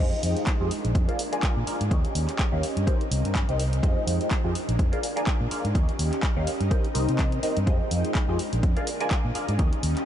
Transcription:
0.00 G#3 D#4 F4 G4 G#4 C5 D#5 G5
0.23 F2, open hi-hat
0.37 closed hi-hat
0.47 kick, clap, closed hi-hat
0.60 F2 F4 G4 G#4 C5 D#5
0.71 D4 A#4 G#5, open hi-hat
0.85 A#1, closed hi-hat
0.95 F2, kick, closed hi-hat
1.08 F4 G#4 A#4 D5 F5, closed hi-hat
1.19 open hi-hat
1.32 F4 G#4 A#4 D5 G#5, closed hi-hat
1.43 F4 G#4 A#4 D5 F5, kick, clap, closed hi-hat
1.57 A#2
1.67 F4 G#4 A#4 D5 F5, open hi-hat
1.81 G#2, closed hi-hat
1.91 D#2 C#4 D#4 G4 A#4 C#5 D#5, kick, closed hi-hat
2.05 closed hi-hat
2.15 D#2, open hi-hat
2.28 clap, closed hi-hat
2.39 kick, clap, closed hi-hat
2.52 D#2 D#4 G4 A#4 C#5 F5
2.63 open hi-hat
2.77 G2, closed hi-hat
2.87 C4 D#4 G4 A#4 C5 G5, kick, closed hi-hat
3.01 closed hi-hat
3.11 C2, open hi-hat
3.25 G2, closed hi-hat
3.35 kick, clap, closed hi-hat
3.49 C2 D#4 G4 A#4 C5 D#5, closed hi-hat
3.60 open hi-hat
3.73 closed hi-hat
3.82 F2 G#3 D#4 F4 G4 G#4 C5 D#5 G5, kick, closed hi-hat
4.07 F2, open hi-hat
4.21 closed hi-hat
4.31 kick, clap, closed hi-hat
4.44 F2 F4 G4 G#4 C5 D#5
4.55 D4 A#4 G#5, open hi-hat
4.69 A#1, closed hi-hat
4.79 F2, kick, closed hi-hat
4.92 F4 G#4 A#4 D5 F5, closed hi-hat
5.03 open hi-hat
5.16 F4 G#4 A#4 D5 G#5, closed hi-hat
5.26 F4 G#4 A#4 D5 F5, kick, clap, closed hi-hat
5.41 A#2
5.50 F4 G#4 A#4 D5 F5, muted fingered electric bass stroke, open hi-hat
5.65 G#2, closed hi-hat
5.75 D#2 C#4 D#4 G4 A#4 C#5 D#5, kick, closed hi-hat
5.89 closed hi-hat
5.99 D#2, open hi-hat
6.13 clap, closed hi-hat
6.23 kick, clap, closed hi-hat
6.36 D#2 D#4 G4 A#4 C#5 F5
6.47 muted fingered electric bass stroke, open hi-hat
6.61 G2, closed hi-hat
6.71 C4 D#4 G4 A#4 C5 G5, kick, closed hi-hat
6.85 closed hi-hat
6.94 C2 D#4 G4 A#4 C5 D#5, open hi-hat
7.09 C3, closed hi-hat
7.19 kick, clap, closed hi-hat
7.32 closed hi-hat
7.43 D#4 G4 A#4 C5 D#5, muted fingered electric bass stroke, open hi-hat
7.57 G2, closed hi-hat
7.66 G#3 D#4 F4 G4 G#4 C5 D#5 G5, kick, closed hi-hat
7.91 F2, open hi-hat
8.05 closed hi-hat
8.15 kick, clap, closed hi-hat
8.28 F2 F4 G4 G#4 C5 D#5
8.39 D4 A#4 G#5, open hi-hat
8.53 A#1, closed hi-hat
8.63 F2, kick, closed hi-hat
8.76 F4 G#4 A#4 D5 F5, closed hi-hat
8.87 open hi-hat
9.00 F4 G#4 A#4 D5 G#5, closed hi-hat
9.11 F4 G#4 A#4 D5 F5, kick, clap, closed hi-hat
9.25 A#2
9.35 F4 G#4 A#4 D5 F5, open hi-hat
9.49 G#2, closed hi-hat
9.58 D#2 C#4 D#4 G4 A#4 C#5 D#5, kick, closed hi-hat
9.73 closed hi-hat
9.83 D#2, open hi-hat
9.97 clap, closed hi-hat

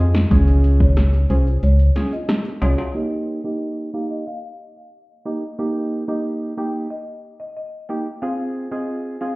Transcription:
Already playing: C4
0.00 F2 F4 G#4 D#5
0.15 snare, shaker
0.31 C#2 C#4 F4 G#4, kick, closed hi-hat, shaker
0.48 closed hi-hat, shaker
0.64 closed hi-hat, shaker
0.80 C#5, kick, shaker
0.97 cross-stick, snare, closed hi-hat, shaker
1.14 closed hi-hat, shaker
1.30 C2 C#4 F4 G#4 C5, closed hi-hat, shaker
1.47 shaker
1.63 C#2 C#5, closed hi-hat, shaker
1.79 closed hi-hat, shaker
1.96 C#4 F4 G#4, snare, closed hi-hat, shaker
2.12 D#5, shaker
2.28 cross-stick, snare, closed hi-hat, shaker
2.45 closed hi-hat, shaker
2.62 C2 C#4 F4 G#4 C#5, closed hi-hat, high timbale, shaker
2.78 high timbale, shaker
2.95 A#3 D#4 G4
3.44 A#3 D#4 G4 D#5
3.94 A#3 D#4 G4 F5
4.11 D#5
4.27 F5
5.25 A#3 D#4 G4 D#5
5.59 A#3 D#4 G4
6.08 A#3 D#4 G4 D#5
6.57 A#3 D#4 G4 G5
6.90 D#5
7.40 D#5
7.57 D#5
7.89 A#3 D#4 G4 G5
8.22 C4 F4 G#4 F5
8.71 C4 F4 G#4 D#5
9.21 C4 F4 G#4 F5

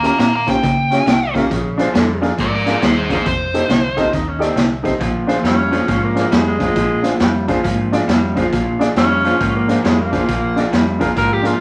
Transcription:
Already playing: D#2 D#3 A#3
0.02 C#4 F4 G4 A#4, snare, closed hi-hat
0.06 F5 A#5
0.18 A#2 D#3 C4 F5 A#5, snare, closed hi-hat
0.36 F5 A#5
0.46 D#3 A#3 C#4 F4 G4 C5, kick, snare, closed hi-hat
0.50 G5
0.62 C#3 D#3 A#3, kick, snare, closed hi-hat
0.91 C#4 F4 G4 C#5, snare, closed hi-hat
1.06 C2 D#3 C4, snare, closed hi-hat
1.34 D#3 A#3 C#4 F4 G4 A#4, kick, snare, closed hi-hat
1.49 A#1 A#2 C#3 F3, kick, snare, closed hi-hat
1.77 F3 D4 F4 G#4 C5, snare, closed hi-hat
1.94 F2 A#2 D3 G3, snare, closed hi-hat
2.21 A#2 F3 D4 F4 G#4 A#4, snare, closed hi-hat
2.38 G#2 A#2 F3 A#4 D5, kick, snare, closed hi-hat
2.55 A#4 D5
2.66 D4 F4 G#4 A#4, snare, closed hi-hat
2.70 A#4 D5
2.82 D#2 A#2 G3 G#4 C5, snare, closed hi-hat
2.98 G#4 C5
3.10 A#2 F3 D4 F4 G#4 A#4, kick, snare, closed hi-hat
3.14 C5
3.25 F1 F2 C3 C5, kick, snare, closed hi-hat
3.54 D#4 G4 A4 C5, snare, closed hi-hat
3.68 C2 F2 D3, snare, closed hi-hat
3.97 F2 C3 D#4 F4 G4 A4 D#5, kick, snare, closed hi-hat
4.12 D#2 F2 C3 D#4, kick, snare, closed hi-hat
4.28 C#4
4.39 D#4 G4 A4 D5, snare, closed hi-hat
4.43 C4
4.56 C2 F2 D3, snare, closed hi-hat
4.83 F2 C3 D#4 G4 A4 C5, kick, snare, closed hi-hat
5.00 A#1 A#2 F3, kick, snare, closed hi-hat
5.27 D4 F4 G#4 C5, snare, closed hi-hat
5.43 F2 A#2 G3 C#4, snare, closed hi-hat
5.71 A#2 F3 D4 F4 G#4 C5, snare, closed hi-hat
5.87 G#2 A#2 F3, kick, snare, closed hi-hat
6.04 A#3
6.15 D4 F4 G#4 C5, snare, closed hi-hat
6.19 A#3
6.32 F2 A#2 G3 G#3, snare, closed hi-hat
6.48 G#3
6.59 A#2 F3 D4 F4 G#4 C5, kick, snare, closed hi-hat
6.76 A#1 A#2 F3, kick, snare, closed hi-hat
7.02 D4 F4 G#4 C5, snare, closed hi-hat
7.20 F2 A#2 G3, snare, closed hi-hat
7.48 A#2 F3 D4 F4 G#4 C5, kick, snare, closed hi-hat
7.64 G#2 A#2 F3, kick, snare, closed hi-hat
7.92 D4 F4 G#4 D5, snare, closed hi-hat
8.08 F2 A#2 G3, snare, closed hi-hat
8.35 A#2 F3 D4 F4 G#4 C5, kick, snare, closed hi-hat
8.52 A#1 A#2 F3, kick, snare, closed hi-hat
8.79 D4 F4 G#4 D5, snare, closed hi-hat
8.96 F2 A#2 G3 C#4, snare, closed hi-hat
9.24 A#2 F3 D4 F4 G#4 C5, snare, closed hi-hat
9.40 G#2 A#2 F3, kick, snare, closed hi-hat
9.56 A#3
9.68 A#3 D4 F4 G#4 C5, snare, closed hi-hat
9.84 F2 A#2 G3 G#3, snare, closed hi-hat
10.01 A#3
10.12 A#2 F3 D4 F4 G#4 C5, kick, snare, closed hi-hat
10.28 A#1 A#2 F3, kick, snare, closed hi-hat
10.56 D4 F4 G#4 D5, snare, closed hi-hat
10.72 F2 A#2 G3, snare, closed hi-hat
10.99 A#2 F3 D4 F4 G#4 A#4, kick, snare, closed hi-hat
11.16 G#2 A#2 F3 A#4, kick, snare, closed hi-hat
11.33 G4
11.42 D4 F4 G#4 A#4, snare, closed hi-hat
11.47 F4

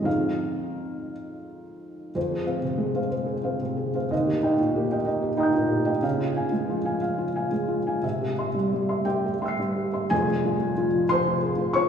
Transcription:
0.02 F2 C4 D#4 G#4 F5
2.15 F2 C5
2.31 G#4
2.45 C4 C5 F5
2.62 C3
2.77 G#3 G#4
2.95 C5 F5
3.10 C5
3.26 G#4
3.43 C4 C5 F5
3.62 C3
3.77 G#4
3.94 C5 F5
4.11 D#2 D#5
4.27 G4
4.43 D#4 D#5 G5
4.60 A#2
4.75 A#3 G4
4.92 D#5 G5
5.06 D#5
5.22 G4
5.37 D#4 D#5 G5 A#5 D#6
5.43 G6
5.55 A#2
5.70 G4
5.85 D#5 G5
6.02 C#3 F5
6.19 F4
6.36 F5 G#5
6.52 G#3
6.69 F3 F4
6.85 F5 G#5
7.01 F5
7.18 F4
7.36 F5 G#5
7.51 G#3
7.68 F4
7.87 F5 G#5
8.02 C3 E5
8.21 G4
8.38 E5 C6
8.54 G3
8.73 G3 G4
8.89 E5 C6
9.05 G4 E5 G5
9.26 G4
9.42 E5 G5 C6 E6
9.48 C7
9.59 G3
9.76 G4
9.93 E5 C6
10.10 F1 F2 G#4 G#5
10.28 G#4
10.45 F4
10.60 F3
10.77 F4
10.94 F3
11.09 C3 C5 C6
11.27 F4
11.43 G#4
11.58 F4
11.73 F3 C#5 C#6

